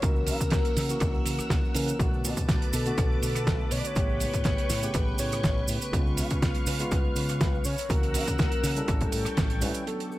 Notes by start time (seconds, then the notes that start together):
Already playing: A#4 F#5 E6
0.02 C#2 E3 A#3 C#4 F#4 A#4, kick, closed hi-hat, cabasa
0.16 cabasa
0.27 C#3, open hi-hat, cabasa
0.40 C#3, kick, closed hi-hat, cabasa
0.50 C#2, kick, snare, closed hi-hat, cabasa
0.65 closed hi-hat, cabasa
0.76 C#3, snare, open hi-hat, cabasa
0.89 E3 A#3 C#4 F#4, closed hi-hat, cabasa
1.00 C#2, kick, cross-stick, closed hi-hat, cabasa
1.14 cabasa
1.26 C#3, open hi-hat, cabasa
1.39 muted fingered electric bass stroke, cross-stick, closed hi-hat, cabasa
1.50 C#2, kick, snare, closed hi-hat, cabasa
1.65 cabasa
1.74 C#3 E3 A#3 C#4 A#4, open hi-hat, cabasa
1.88 closed hi-hat, cabasa
1.99 B1 D3 A3 B3 F#4 B4 A5 D6, kick, closed hi-hat, cabasa
2.14 cabasa
2.24 B2, open hi-hat, cabasa
2.37 B2, kick, closed hi-hat, cabasa
2.49 B1, kick, snare, closed hi-hat, cabasa
2.62 closed hi-hat, cabasa
2.73 B2 A4, open hi-hat, cabasa
2.85 D3 A3 B3 F#4, closed hi-hat, cabasa
2.97 B1, kick, cross-stick, closed hi-hat, cabasa
3.12 cabasa
3.22 B2, open hi-hat, cabasa
3.35 cross-stick, closed hi-hat, cabasa
3.47 B1, kick, snare, closed hi-hat, cabasa
3.60 cabasa
3.71 B2 C#5, open hi-hat, cabasa
3.79 D5
3.84 C#5, closed hi-hat, cabasa
3.95 A1 C#3 A3 B3 G4 G5 C#6, kick, closed hi-hat, cabasa
4.09 cabasa
4.20 A2, open hi-hat, cabasa
4.34 A2, kick, closed hi-hat, cabasa
4.44 A1 C#5, kick, snare, closed hi-hat, cabasa
4.58 closed hi-hat, cabasa
4.70 A2, snare, open hi-hat, cabasa
4.82 C#3 A3 B3 G4, closed hi-hat, cabasa
4.94 A1 B4, kick, cross-stick, closed hi-hat, cabasa
5.08 cabasa
5.18 A2 C#5, open hi-hat, cabasa
5.32 cross-stick, closed hi-hat, cabasa
5.44 A1, kick, snare, closed hi-hat, cabasa
5.57 cabasa
5.68 A2, open hi-hat, cabasa
5.82 closed hi-hat, cabasa
5.92 C#2 C#3 G#3 B3 F4 F5, kick, closed hi-hat, cabasa
6.07 cabasa
6.17 C#3, open hi-hat, cabasa
6.30 C#3, kick, closed hi-hat, cabasa
6.42 C#2, kick, snare, closed hi-hat, cabasa
6.54 closed hi-hat, cabasa
6.66 C#3 B4, open hi-hat, cabasa
6.79 C#3 G#3 B3 F4, closed hi-hat, cabasa
6.91 C#2, kick, cross-stick, closed hi-hat, cabasa
7.04 cabasa
7.16 C#3, open hi-hat, cabasa
7.29 cross-stick, closed hi-hat, cabasa
7.41 C#2, kick, snare, closed hi-hat, cabasa
7.55 cabasa
7.64 C#3 A#4 C#5 F#5 E6, open hi-hat, cabasa
7.78 closed hi-hat, cabasa
7.89 C#2 E3 A#3 C#4 F#4 A#4, kick, closed hi-hat, cabasa
8.03 closed hi-hat, cabasa
8.14 C#3, open hi-hat, cabasa
8.27 C#3, kick, closed hi-hat, cabasa
8.38 C#2 A#4, kick, snare, closed hi-hat, cabasa
8.52 closed hi-hat, cabasa
8.63 C#3, snare, open hi-hat, cabasa
8.76 G3 C#4 E4 A4, closed hi-hat, cabasa
8.88 A1 A4 G5 C#6, kick, cross-stick, closed hi-hat, cabasa
9.01 kick, closed hi-hat, cabasa
9.12 A2, open hi-hat, cabasa
9.25 muted fingered electric bass stroke, cross-stick, closed hi-hat, cabasa
9.37 A1, kick, snare, closed hi-hat, cabasa
9.50 closed hi-hat, cabasa
9.61 A2 G3 C#4 E4 B4, open hi-hat, cabasa
9.74 closed hi-hat, cabasa
9.86 F#3 B3 D4 A4 D6, closed hi-hat, cabasa
10.00 closed hi-hat, cabasa
10.12 cabasa